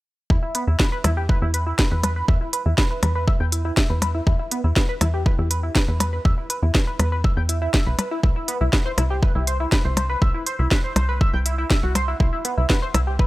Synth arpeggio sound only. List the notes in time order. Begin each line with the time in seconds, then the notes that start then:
0.30 E4
0.43 E4
0.55 B3
0.67 E4
0.80 B4
0.92 B4
1.04 E4
1.17 G4
1.29 B4
1.42 E4
1.54 B4
1.67 E4
1.79 B4
1.91 B4
2.04 B4
2.16 B4
2.28 E5
2.41 E4
2.53 B4
2.66 E4
2.78 B4
2.91 B4
3.03 B4
3.15 B4
3.28 E5
3.40 G5
3.52 E4
3.65 E4
3.77 E5
3.90 B4
4.02 B4
4.15 E4
4.27 E4
4.39 E4
4.51 B3
4.64 E4
4.76 B4
4.89 B4
5.01 E4
5.14 G4
5.26 B4
5.39 E4
5.51 B4
5.63 E4
5.75 B4
5.88 B4
6.00 B4
6.13 B4
6.25 E5
6.38 E4
6.50 B4
6.63 E4
6.75 B4
6.87 B4
7.00 B4
7.12 B4
7.24 E5
7.37 G5
7.49 E4
7.62 E4
7.74 E5
7.87 B4
7.99 B4
8.11 E4
8.23 E4
8.36 E4
8.48 B3
8.61 E4
8.73 B4
8.86 C5
8.98 E4
9.10 G4
9.23 B4
9.35 E4
9.47 C5
9.60 E4
9.72 B4
9.85 C5
9.97 C5
10.10 B4
10.22 E5
10.34 E4
10.47 C5
10.59 E4
10.71 B4
10.84 C5
10.96 C5
11.09 B4
11.21 E5
11.33 G5
11.46 E4
11.58 E4
11.70 E5
11.83 F#4
11.95 C5
12.08 E4
12.20 E4
12.33 E4
12.45 B3
12.58 E4
12.70 B4
12.82 C5
12.94 E4
13.07 G4
13.19 B4